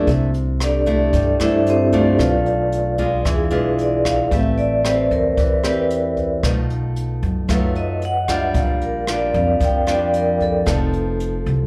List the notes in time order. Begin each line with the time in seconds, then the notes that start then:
Already playing: A3 D4 E4
0.07 C2 C3, kick, closed hi-hat
0.34 closed hi-hat
0.60 D4 G4 A4 D5, cross-stick, closed hi-hat
0.86 A3 D4 E4, kick, closed hi-hat
1.13 G2 G3, kick, closed hi-hat
1.40 G2 A3 D4 E4 A4 C5 E5, cross-stick, closed hi-hat
1.66 C4 G4 A4 C5, closed hi-hat
1.93 A3 D4 F4 G4 A4 D5, kick, closed hi-hat
2.19 B1 B2 F4 B4 D5 F5, kick, cross-stick, closed hi-hat
2.46 closed hi-hat
2.72 closed hi-hat
2.98 G#3 D4 F4, kick, closed hi-hat
3.25 E2 E3 G#4, kick, cross-stick, closed hi-hat
3.51 B1 G#3 D4 F4 B4, closed hi-hat
3.78 D5, closed hi-hat
4.05 F5, kick, cross-stick, closed hi-hat
4.31 A1 A3 C4 G4 B4 E5, kick, closed hi-hat
4.58 D5, closed hi-hat
4.85 C4 G4 B4 C5, cross-stick, closed hi-hat
5.11 E2 A#4, kick, closed hi-hat
5.37 E2 E3 B4, kick, closed hi-hat
5.64 C4 G4 B4, cross-stick, closed hi-hat
5.90 closed hi-hat
6.17 kick, closed hi-hat
6.43 B1 B2 A3 D#4 F4, kick, cross-stick, closed hi-hat
6.70 closed hi-hat
6.96 closed hi-hat
7.23 F#2, kick, closed hi-hat
7.48 F#2 F#3 A3 D#4 F4, kick, cross-stick, closed hi-hat
7.52 B4
7.75 D#5, closed hi-hat
8.02 F#5, closed hi-hat
8.28 G3 D4 F4 E5, kick, cross-stick, closed hi-hat
8.54 A#1 A#2 F5, kick, closed hi-hat
8.81 A#4, closed hi-hat
9.07 G3 D4 F4 D5, cross-stick, closed hi-hat
9.34 F2 F5, kick, closed hi-hat
9.60 F2 F3, kick, closed hi-hat
9.65 G5
9.87 G3 D4 F4 D5, cross-stick, closed hi-hat
10.14 A#4, closed hi-hat
10.40 A4, kick, closed hi-hat
10.66 F1 F3 B3 D#4 A4, kick, cross-stick, closed hi-hat
10.93 closed hi-hat
11.20 closed hi-hat
11.46 C2, kick, closed hi-hat